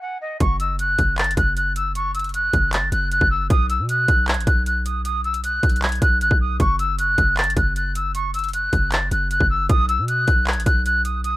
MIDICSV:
0, 0, Header, 1, 4, 480
1, 0, Start_track
1, 0, Tempo, 387097
1, 502, Time_signature, 4, 2, 24, 8
1, 14095, End_track
2, 0, Start_track
2, 0, Title_t, "Flute"
2, 0, Program_c, 0, 73
2, 23, Note_on_c, 0, 78, 90
2, 222, Note_off_c, 0, 78, 0
2, 267, Note_on_c, 0, 75, 85
2, 464, Note_off_c, 0, 75, 0
2, 501, Note_on_c, 0, 85, 100
2, 701, Note_off_c, 0, 85, 0
2, 744, Note_on_c, 0, 88, 83
2, 943, Note_off_c, 0, 88, 0
2, 982, Note_on_c, 0, 90, 92
2, 1433, Note_off_c, 0, 90, 0
2, 1460, Note_on_c, 0, 93, 98
2, 1660, Note_off_c, 0, 93, 0
2, 1703, Note_on_c, 0, 90, 90
2, 1902, Note_off_c, 0, 90, 0
2, 1941, Note_on_c, 0, 90, 81
2, 2141, Note_off_c, 0, 90, 0
2, 2185, Note_on_c, 0, 88, 87
2, 2383, Note_off_c, 0, 88, 0
2, 2424, Note_on_c, 0, 85, 102
2, 2623, Note_off_c, 0, 85, 0
2, 2663, Note_on_c, 0, 88, 81
2, 2862, Note_off_c, 0, 88, 0
2, 2904, Note_on_c, 0, 90, 91
2, 3354, Note_off_c, 0, 90, 0
2, 3385, Note_on_c, 0, 93, 93
2, 3583, Note_off_c, 0, 93, 0
2, 3624, Note_on_c, 0, 90, 86
2, 3823, Note_off_c, 0, 90, 0
2, 3866, Note_on_c, 0, 90, 94
2, 4064, Note_off_c, 0, 90, 0
2, 4101, Note_on_c, 0, 88, 87
2, 4301, Note_off_c, 0, 88, 0
2, 4343, Note_on_c, 0, 87, 112
2, 4542, Note_off_c, 0, 87, 0
2, 4585, Note_on_c, 0, 88, 82
2, 4783, Note_off_c, 0, 88, 0
2, 4825, Note_on_c, 0, 90, 95
2, 5275, Note_off_c, 0, 90, 0
2, 5303, Note_on_c, 0, 92, 87
2, 5502, Note_off_c, 0, 92, 0
2, 5537, Note_on_c, 0, 90, 91
2, 5739, Note_off_c, 0, 90, 0
2, 5783, Note_on_c, 0, 90, 88
2, 5982, Note_off_c, 0, 90, 0
2, 6022, Note_on_c, 0, 87, 79
2, 6221, Note_off_c, 0, 87, 0
2, 6259, Note_on_c, 0, 87, 101
2, 6460, Note_off_c, 0, 87, 0
2, 6507, Note_on_c, 0, 88, 77
2, 6704, Note_off_c, 0, 88, 0
2, 6744, Note_on_c, 0, 90, 91
2, 7194, Note_off_c, 0, 90, 0
2, 7226, Note_on_c, 0, 92, 97
2, 7424, Note_off_c, 0, 92, 0
2, 7465, Note_on_c, 0, 90, 92
2, 7663, Note_off_c, 0, 90, 0
2, 7704, Note_on_c, 0, 90, 93
2, 7903, Note_off_c, 0, 90, 0
2, 7948, Note_on_c, 0, 87, 91
2, 8145, Note_off_c, 0, 87, 0
2, 8183, Note_on_c, 0, 85, 105
2, 8382, Note_off_c, 0, 85, 0
2, 8426, Note_on_c, 0, 88, 85
2, 8624, Note_off_c, 0, 88, 0
2, 8663, Note_on_c, 0, 90, 91
2, 9114, Note_off_c, 0, 90, 0
2, 9141, Note_on_c, 0, 93, 97
2, 9341, Note_off_c, 0, 93, 0
2, 9384, Note_on_c, 0, 90, 87
2, 9583, Note_off_c, 0, 90, 0
2, 9625, Note_on_c, 0, 90, 82
2, 9823, Note_off_c, 0, 90, 0
2, 9865, Note_on_c, 0, 88, 84
2, 10064, Note_off_c, 0, 88, 0
2, 10104, Note_on_c, 0, 85, 107
2, 10303, Note_off_c, 0, 85, 0
2, 10343, Note_on_c, 0, 88, 84
2, 10542, Note_off_c, 0, 88, 0
2, 10583, Note_on_c, 0, 90, 91
2, 11034, Note_off_c, 0, 90, 0
2, 11066, Note_on_c, 0, 93, 92
2, 11264, Note_off_c, 0, 93, 0
2, 11304, Note_on_c, 0, 90, 85
2, 11503, Note_off_c, 0, 90, 0
2, 11542, Note_on_c, 0, 90, 91
2, 11742, Note_off_c, 0, 90, 0
2, 11781, Note_on_c, 0, 88, 91
2, 11981, Note_off_c, 0, 88, 0
2, 12021, Note_on_c, 0, 87, 116
2, 12221, Note_off_c, 0, 87, 0
2, 12261, Note_on_c, 0, 88, 84
2, 12461, Note_off_c, 0, 88, 0
2, 12502, Note_on_c, 0, 90, 92
2, 12953, Note_off_c, 0, 90, 0
2, 12984, Note_on_c, 0, 92, 88
2, 13183, Note_off_c, 0, 92, 0
2, 13215, Note_on_c, 0, 90, 89
2, 13418, Note_off_c, 0, 90, 0
2, 13462, Note_on_c, 0, 90, 86
2, 13662, Note_off_c, 0, 90, 0
2, 13702, Note_on_c, 0, 87, 79
2, 13902, Note_off_c, 0, 87, 0
2, 13938, Note_on_c, 0, 87, 102
2, 14095, Note_off_c, 0, 87, 0
2, 14095, End_track
3, 0, Start_track
3, 0, Title_t, "808-style bass"
3, 0, Program_c, 1, 38
3, 502, Note_on_c, 1, 30, 113
3, 1193, Note_off_c, 1, 30, 0
3, 1223, Note_on_c, 1, 30, 104
3, 1683, Note_off_c, 1, 30, 0
3, 1701, Note_on_c, 1, 30, 109
3, 3092, Note_off_c, 1, 30, 0
3, 3142, Note_on_c, 1, 30, 107
3, 3603, Note_off_c, 1, 30, 0
3, 3622, Note_on_c, 1, 30, 106
3, 3967, Note_off_c, 1, 30, 0
3, 3982, Note_on_c, 1, 30, 105
3, 4328, Note_off_c, 1, 30, 0
3, 4342, Note_on_c, 1, 35, 109
3, 4702, Note_on_c, 1, 47, 98
3, 4720, Note_off_c, 1, 35, 0
3, 5044, Note_off_c, 1, 47, 0
3, 5064, Note_on_c, 1, 35, 112
3, 5422, Note_on_c, 1, 33, 96
3, 5441, Note_off_c, 1, 35, 0
3, 5536, Note_off_c, 1, 33, 0
3, 5542, Note_on_c, 1, 35, 107
3, 6932, Note_off_c, 1, 35, 0
3, 6983, Note_on_c, 1, 35, 105
3, 7443, Note_off_c, 1, 35, 0
3, 7462, Note_on_c, 1, 35, 109
3, 7703, Note_on_c, 1, 33, 103
3, 7721, Note_off_c, 1, 35, 0
3, 7816, Note_off_c, 1, 33, 0
3, 7823, Note_on_c, 1, 35, 103
3, 8168, Note_off_c, 1, 35, 0
3, 8182, Note_on_c, 1, 30, 114
3, 8873, Note_off_c, 1, 30, 0
3, 8904, Note_on_c, 1, 30, 105
3, 9364, Note_off_c, 1, 30, 0
3, 9382, Note_on_c, 1, 30, 109
3, 10772, Note_off_c, 1, 30, 0
3, 10823, Note_on_c, 1, 30, 107
3, 11283, Note_off_c, 1, 30, 0
3, 11302, Note_on_c, 1, 30, 106
3, 11647, Note_off_c, 1, 30, 0
3, 11661, Note_on_c, 1, 30, 106
3, 12007, Note_off_c, 1, 30, 0
3, 12022, Note_on_c, 1, 35, 110
3, 12382, Note_on_c, 1, 47, 100
3, 12400, Note_off_c, 1, 35, 0
3, 12724, Note_off_c, 1, 47, 0
3, 12743, Note_on_c, 1, 35, 108
3, 13101, Note_on_c, 1, 33, 97
3, 13120, Note_off_c, 1, 35, 0
3, 13215, Note_off_c, 1, 33, 0
3, 13221, Note_on_c, 1, 35, 108
3, 14095, Note_off_c, 1, 35, 0
3, 14095, End_track
4, 0, Start_track
4, 0, Title_t, "Drums"
4, 501, Note_on_c, 9, 36, 124
4, 501, Note_on_c, 9, 42, 86
4, 625, Note_off_c, 9, 36, 0
4, 625, Note_off_c, 9, 42, 0
4, 741, Note_on_c, 9, 42, 74
4, 865, Note_off_c, 9, 42, 0
4, 981, Note_on_c, 9, 42, 97
4, 1105, Note_off_c, 9, 42, 0
4, 1221, Note_on_c, 9, 42, 71
4, 1223, Note_on_c, 9, 36, 88
4, 1345, Note_off_c, 9, 42, 0
4, 1347, Note_off_c, 9, 36, 0
4, 1461, Note_on_c, 9, 39, 115
4, 1461, Note_on_c, 9, 42, 48
4, 1541, Note_off_c, 9, 42, 0
4, 1541, Note_on_c, 9, 42, 66
4, 1585, Note_off_c, 9, 39, 0
4, 1622, Note_off_c, 9, 42, 0
4, 1622, Note_on_c, 9, 42, 83
4, 1701, Note_off_c, 9, 42, 0
4, 1701, Note_on_c, 9, 36, 92
4, 1701, Note_on_c, 9, 42, 85
4, 1825, Note_off_c, 9, 36, 0
4, 1825, Note_off_c, 9, 42, 0
4, 1942, Note_on_c, 9, 42, 83
4, 2066, Note_off_c, 9, 42, 0
4, 2181, Note_on_c, 9, 42, 96
4, 2305, Note_off_c, 9, 42, 0
4, 2422, Note_on_c, 9, 42, 88
4, 2546, Note_off_c, 9, 42, 0
4, 2661, Note_on_c, 9, 42, 75
4, 2722, Note_off_c, 9, 42, 0
4, 2722, Note_on_c, 9, 42, 65
4, 2782, Note_off_c, 9, 42, 0
4, 2782, Note_on_c, 9, 42, 57
4, 2842, Note_off_c, 9, 42, 0
4, 2842, Note_on_c, 9, 42, 46
4, 2902, Note_off_c, 9, 42, 0
4, 2902, Note_on_c, 9, 42, 96
4, 3026, Note_off_c, 9, 42, 0
4, 3142, Note_on_c, 9, 42, 67
4, 3143, Note_on_c, 9, 36, 91
4, 3266, Note_off_c, 9, 42, 0
4, 3267, Note_off_c, 9, 36, 0
4, 3382, Note_on_c, 9, 39, 115
4, 3382, Note_on_c, 9, 42, 81
4, 3506, Note_off_c, 9, 39, 0
4, 3506, Note_off_c, 9, 42, 0
4, 3622, Note_on_c, 9, 42, 87
4, 3746, Note_off_c, 9, 42, 0
4, 3863, Note_on_c, 9, 42, 84
4, 3982, Note_on_c, 9, 36, 101
4, 3987, Note_off_c, 9, 42, 0
4, 4106, Note_off_c, 9, 36, 0
4, 4342, Note_on_c, 9, 36, 123
4, 4343, Note_on_c, 9, 42, 83
4, 4466, Note_off_c, 9, 36, 0
4, 4467, Note_off_c, 9, 42, 0
4, 4583, Note_on_c, 9, 42, 74
4, 4707, Note_off_c, 9, 42, 0
4, 4823, Note_on_c, 9, 42, 96
4, 4947, Note_off_c, 9, 42, 0
4, 5063, Note_on_c, 9, 42, 71
4, 5064, Note_on_c, 9, 36, 87
4, 5187, Note_off_c, 9, 42, 0
4, 5188, Note_off_c, 9, 36, 0
4, 5303, Note_on_c, 9, 42, 49
4, 5304, Note_on_c, 9, 39, 115
4, 5383, Note_off_c, 9, 42, 0
4, 5383, Note_on_c, 9, 42, 64
4, 5428, Note_off_c, 9, 39, 0
4, 5462, Note_off_c, 9, 42, 0
4, 5462, Note_on_c, 9, 42, 81
4, 5542, Note_on_c, 9, 36, 95
4, 5543, Note_off_c, 9, 42, 0
4, 5543, Note_on_c, 9, 42, 85
4, 5666, Note_off_c, 9, 36, 0
4, 5667, Note_off_c, 9, 42, 0
4, 5782, Note_on_c, 9, 42, 82
4, 5906, Note_off_c, 9, 42, 0
4, 6022, Note_on_c, 9, 42, 94
4, 6146, Note_off_c, 9, 42, 0
4, 6262, Note_on_c, 9, 42, 87
4, 6386, Note_off_c, 9, 42, 0
4, 6501, Note_on_c, 9, 42, 46
4, 6622, Note_off_c, 9, 42, 0
4, 6622, Note_on_c, 9, 42, 82
4, 6742, Note_off_c, 9, 42, 0
4, 6742, Note_on_c, 9, 42, 99
4, 6866, Note_off_c, 9, 42, 0
4, 6982, Note_on_c, 9, 42, 66
4, 6983, Note_on_c, 9, 36, 91
4, 7062, Note_off_c, 9, 42, 0
4, 7062, Note_on_c, 9, 42, 61
4, 7107, Note_off_c, 9, 36, 0
4, 7142, Note_off_c, 9, 42, 0
4, 7142, Note_on_c, 9, 42, 62
4, 7222, Note_off_c, 9, 42, 0
4, 7222, Note_on_c, 9, 39, 110
4, 7222, Note_on_c, 9, 42, 52
4, 7302, Note_off_c, 9, 42, 0
4, 7302, Note_on_c, 9, 42, 48
4, 7342, Note_off_c, 9, 42, 0
4, 7342, Note_on_c, 9, 42, 84
4, 7346, Note_off_c, 9, 39, 0
4, 7382, Note_off_c, 9, 42, 0
4, 7382, Note_on_c, 9, 42, 42
4, 7461, Note_on_c, 9, 36, 92
4, 7462, Note_off_c, 9, 42, 0
4, 7462, Note_on_c, 9, 42, 89
4, 7585, Note_off_c, 9, 36, 0
4, 7586, Note_off_c, 9, 42, 0
4, 7702, Note_on_c, 9, 42, 80
4, 7822, Note_on_c, 9, 36, 101
4, 7826, Note_off_c, 9, 42, 0
4, 7946, Note_off_c, 9, 36, 0
4, 8182, Note_on_c, 9, 36, 121
4, 8182, Note_on_c, 9, 42, 82
4, 8306, Note_off_c, 9, 36, 0
4, 8306, Note_off_c, 9, 42, 0
4, 8422, Note_on_c, 9, 42, 75
4, 8546, Note_off_c, 9, 42, 0
4, 8662, Note_on_c, 9, 42, 95
4, 8786, Note_off_c, 9, 42, 0
4, 8903, Note_on_c, 9, 36, 91
4, 8903, Note_on_c, 9, 42, 73
4, 9027, Note_off_c, 9, 36, 0
4, 9027, Note_off_c, 9, 42, 0
4, 9142, Note_on_c, 9, 39, 114
4, 9142, Note_on_c, 9, 42, 49
4, 9222, Note_off_c, 9, 42, 0
4, 9222, Note_on_c, 9, 42, 65
4, 9266, Note_off_c, 9, 39, 0
4, 9301, Note_off_c, 9, 42, 0
4, 9301, Note_on_c, 9, 42, 85
4, 9382, Note_off_c, 9, 42, 0
4, 9382, Note_on_c, 9, 36, 92
4, 9382, Note_on_c, 9, 42, 83
4, 9506, Note_off_c, 9, 36, 0
4, 9506, Note_off_c, 9, 42, 0
4, 9623, Note_on_c, 9, 42, 81
4, 9747, Note_off_c, 9, 42, 0
4, 9863, Note_on_c, 9, 42, 99
4, 9987, Note_off_c, 9, 42, 0
4, 10102, Note_on_c, 9, 42, 84
4, 10226, Note_off_c, 9, 42, 0
4, 10342, Note_on_c, 9, 42, 76
4, 10402, Note_off_c, 9, 42, 0
4, 10402, Note_on_c, 9, 42, 63
4, 10462, Note_off_c, 9, 42, 0
4, 10462, Note_on_c, 9, 42, 60
4, 10522, Note_off_c, 9, 42, 0
4, 10522, Note_on_c, 9, 42, 46
4, 10582, Note_off_c, 9, 42, 0
4, 10582, Note_on_c, 9, 42, 97
4, 10706, Note_off_c, 9, 42, 0
4, 10822, Note_on_c, 9, 42, 69
4, 10823, Note_on_c, 9, 36, 92
4, 10946, Note_off_c, 9, 42, 0
4, 10947, Note_off_c, 9, 36, 0
4, 11061, Note_on_c, 9, 42, 78
4, 11062, Note_on_c, 9, 39, 115
4, 11185, Note_off_c, 9, 42, 0
4, 11186, Note_off_c, 9, 39, 0
4, 11302, Note_on_c, 9, 42, 88
4, 11426, Note_off_c, 9, 42, 0
4, 11541, Note_on_c, 9, 42, 84
4, 11662, Note_on_c, 9, 36, 101
4, 11665, Note_off_c, 9, 42, 0
4, 11786, Note_off_c, 9, 36, 0
4, 12021, Note_on_c, 9, 42, 89
4, 12022, Note_on_c, 9, 36, 124
4, 12145, Note_off_c, 9, 42, 0
4, 12146, Note_off_c, 9, 36, 0
4, 12262, Note_on_c, 9, 42, 76
4, 12386, Note_off_c, 9, 42, 0
4, 12502, Note_on_c, 9, 42, 97
4, 12626, Note_off_c, 9, 42, 0
4, 12741, Note_on_c, 9, 42, 69
4, 12743, Note_on_c, 9, 36, 91
4, 12865, Note_off_c, 9, 42, 0
4, 12867, Note_off_c, 9, 36, 0
4, 12981, Note_on_c, 9, 42, 49
4, 12982, Note_on_c, 9, 39, 118
4, 13061, Note_off_c, 9, 42, 0
4, 13061, Note_on_c, 9, 42, 65
4, 13106, Note_off_c, 9, 39, 0
4, 13141, Note_off_c, 9, 42, 0
4, 13141, Note_on_c, 9, 42, 85
4, 13221, Note_on_c, 9, 36, 93
4, 13222, Note_off_c, 9, 42, 0
4, 13222, Note_on_c, 9, 42, 83
4, 13345, Note_off_c, 9, 36, 0
4, 13346, Note_off_c, 9, 42, 0
4, 13462, Note_on_c, 9, 42, 85
4, 13586, Note_off_c, 9, 42, 0
4, 13701, Note_on_c, 9, 42, 92
4, 13825, Note_off_c, 9, 42, 0
4, 13941, Note_on_c, 9, 42, 83
4, 14065, Note_off_c, 9, 42, 0
4, 14095, End_track
0, 0, End_of_file